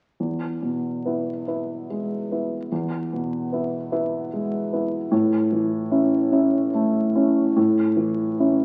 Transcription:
0.20 E2
0.62 B2
1.06 B3 E4
1.48 B3 E4
1.90 G#3
2.32 B3 E4
2.72 E2
3.13 B2
3.52 B3 E4
3.92 B3 E4
4.33 G#3
4.73 B3 E4
5.11 A2
5.52 E3
5.91 C#4 E4
6.32 C#4 E4
6.74 A3
7.15 C#4 E4
7.56 A2
7.96 E3
8.39 C#4 E4

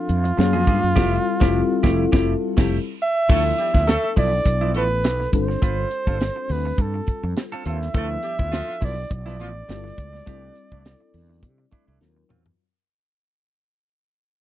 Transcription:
Already playing: F3 C4 D4 F4 A4 E5
0.09 F2, closed hi-hat
0.24 muted clean electric guitar stroke, closed hi-hat
0.37 F#2 F#3 A#3 C#4 F4 G#4, muted clean electric guitar stroke, snare
0.53 F2 A#3 F4 G#4, closed hi-hat
0.67 G2 A#3 F4 G#4, kick, closed hi-hat
0.82 F#2, muted clean electric guitar stroke, closed hi-hat
0.95 F1 G3 A3 C4 E4 F4 G4 A4, kick, snare, crash
1.40 F1 G3 A3 C4 E4 F4 G4 A4, kick, snare
1.83 F1 G3 A3 C4 E4 F4 G4 A4, kick, snare
2.11 F1 G3 A3 C4 E4 F4 G4 A4, kick, snare
2.56 F1 G3 A3 C4 E4 F4 G4 A4, kick, snare, crash
3.02 E5
3.29 D2 F3 A3 B3 D4 E4 A4, kick, crash
3.58 G3 G4, muted clean electric guitar stroke, closed hi-hat
3.74 D2 F3 B3 E4, kick, snare
3.87 A3 A4, muted clean electric guitar stroke, snare, closed hi-hat
4.03 muted clean electric guitar stroke
4.16 B1 F3 B3 E4 D5, kick, open hi-hat
4.33 muted clean electric guitar stroke
4.46 B1, muted clean electric guitar stroke, kick, closed hi-hat
4.61 F3 B3 E4
4.74 A1 F3 A3 B3 E4 A4 B4, closed hi-hat
5.04 B1, muted clean electric guitar stroke, snare, closed hi-hat
5.20 muted clean electric guitar stroke, snare
5.32 G1 G3 C4 D4 F4 A4 C5, kick, closed hi-hat
5.48 muted clean electric guitar stroke, snare
5.62 G1 C4 F4 B4, kick, closed hi-hat
5.91 muted clean electric guitar stroke, closed hi-hat
6.07 G1 C4 F4 A4, kick
6.21 snare, closed hi-hat
6.36 muted clean electric guitar stroke
6.49 D2 B4, open hi-hat
6.65 muted clean electric guitar stroke
6.78 G2 A4, muted clean electric guitar stroke, kick, closed hi-hat
6.94 muted clean electric guitar stroke
7.07 kick, closed hi-hat
7.23 F2, muted clean electric guitar stroke
7.37 muted clean electric guitar stroke, snare, closed hi-hat
7.52 C4 F4 A4
7.65 D#2 C4 F4 A4 E5, closed hi-hat
7.82 snare
7.93 D2 F3 A3 B3 D4 E4 A4, kick, closed hi-hat
8.23 G3 G4, closed hi-hat
8.39 D2 F3 B3 E4, kick
8.52 F3 F4, snare, closed hi-hat
8.68 muted clean electric guitar stroke
8.81 B1 F3 B3 E4 D5, kick, open hi-hat
8.97 muted clean electric guitar stroke
9.10 B1 D5, muted clean electric guitar stroke, kick, closed hi-hat
9.26 F3 B3 E4, snare
9.39 A1 F3 B3 E4 F4, closed hi-hat
9.68 G1 G3 B3 E4 F4 G4, muted clean electric guitar stroke, snare, closed hi-hat
9.76 A4
9.84 muted clean electric guitar stroke, snare
9.98 C#2, kick, closed hi-hat
10.13 muted clean electric guitar stroke, snare
10.26 C2 G3 A3 C4 D4 E4 G4 A4, kick, closed hi-hat
10.56 closed hi-hat
10.72 C2 A3 D4 E4, kick
10.85 snare, closed hi-hat
11.01 muted clean electric guitar stroke
11.14 E2, open hi-hat
11.29 muted clean electric guitar stroke
11.43 C3, muted clean electric guitar stroke, kick, closed hi-hat
11.58 muted clean electric guitar stroke
11.71 A3 D4 E4, kick, closed hi-hat
11.87 C2 A3 D4 E4
12.00 D#2 F#3 C4 D#4 F4 A4, snare
12.08 A#4
12.16 muted clean electric guitar stroke
12.29 E2 F#3 C4 F4, mid tom
12.46 muted clean electric guitar stroke, floor tom

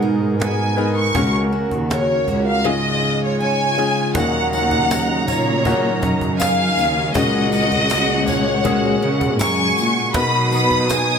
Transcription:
Already playing: G#2 B2 D#3 B3 D#4 G#4 A#4
0.02 D#4
0.40 B3 G#5, cajon slap
0.77 B3 D#4 G#4 A#4
0.96 C#6
1.14 C#2 C#3 A#3 C#4 F#4 A#4, cajon bass
1.53 F#4
1.71 D#2, cajon bass
1.90 A#4 C#5, cajon slap
2.27 C#2 F#4, cajon bass
2.47 F5
2.65 G#2 C#3 G#3 C#4 F4 G#4 D#5
3.03 F4
3.24 C#5
3.40 C#4 C#5 G#5
3.78 G#3 C#4 F4 G#4
4.14 D#2 A#2 C#3 D#3 F#3 A#3 C#4 D#4 F#4 F#5 A#5, cajon bass, tambourine
4.53 C#4 F#5, tambourine
4.71 cajon bass
4.91 D#4, cajon slap, tambourine
5.27 A#2 C#4 C#5, cajon bass, tambourine
5.65 A#3 C#4 D#4 F#4, cajon bass, tambourine
6.02 F#2 C#4, cajon bass
6.21 cajon bass
6.40 A#4 F5 G#5, cajon slap, tambourine
6.77 D#2 C#4, tambourine
7.14 C#2 A#2 C#3 G#3 A#3 C#4 F#4 D#5 F#5, cajon bass, tambourine
7.52 C#4 D#5, tambourine
7.72 cajon bass
7.90 F#4, cajon slap, tambourine
8.27 C#4 C#5, cajon bass, tambourine
8.64 G#3 A#3 C#4 F#4 G#4, cajon bass
9.02 C#3 C#4
9.21 cajon bass
9.39 F#2 A#4 G#5 C#6, cajon slap, tambourine
9.76 A#2 C#4, tambourine
10.14 B2 F#3 A#3 B3 D#4 F#4 B5 D#6, cajon bass, tambourine
10.51 B3 B5, tambourine
10.71 cajon bass
10.88 D#4 G#5, cajon slap, tambourine

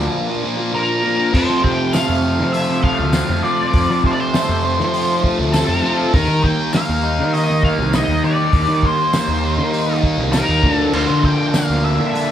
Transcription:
Already playing: A#2 F3 A#3 D4 A#4 D5
0.00 snare
0.27 F3 A#3
0.43 A#2 F3 A#3
0.57 F3 A#3
0.73 A#2 F3 A#3 A#4
1.03 A#2 F3 A#3
1.17 F3 A#3
1.32 F2 F3 A3 C4 A4 C5, kick, crash
1.49 F3
1.63 C3 G5, kick
1.93 A3 F5, snare, open hi-hat, tambourine
2.09 F2
2.23 C4
2.40 F3
2.52 F3 E5, open hi-hat
2.69 snare
2.82 A3 F5, kick
2.99 D2
3.13 C4, snare, open hi-hat, tambourine
3.29 F2
3.43 F3 F4 D5
3.72 F2, kick, open hi-hat
3.90 F3
4.03 C3 C5, kick
4.11 D5
4.20 C5
4.33 A3, snare, open hi-hat, tambourine
4.49 F2
4.64 C4
4.80 F3, snare
4.94 F3, open hi-hat
5.23 A3, kick
5.39 D2
5.53 C4 A4, snare, open hi-hat, tambourine
5.68 F2
5.82 F3 F4
6.11 D#2 G3 A#3 D#4 A#4 G5, kick, open hi-hat
6.15 D#3
6.28 D#3
6.44 A#3 G5, kick
6.73 A#3 F5, snare, open hi-hat, tambourine
6.89 D#2
7.03 D#4
7.19 D#3
7.34 D#3 D#5, open hi-hat
7.49 snare
7.63 A#3 F5, kick
7.79 C2
7.93 D#4 D#5, snare, open hi-hat, tambourine
8.08 D#2
8.24 D#3 G4 D5
8.53 D#2 D#3, kick, open hi-hat
8.68 D#3
8.83 A#3 C5, kick
9.13 A#3, snare, open hi-hat, tambourine
9.28 D#2
9.43 D#4
9.58 D#3
9.72 D#3, open hi-hat
10.02 A#3, kick
10.18 C2
10.33 D#4 A#4, snare, open hi-hat, tambourine
10.49 D#2
10.62 D2 D3 F3 D4 D5, kick
10.73 A4
10.93 D2 D3 C5, crash
11.10 D3
11.23 A#3 G5, kick
11.54 A#3 F5, snare, open hi-hat, tambourine
11.70 D2
11.84 D4 E5
12.00 D3
12.13 D3, open hi-hat

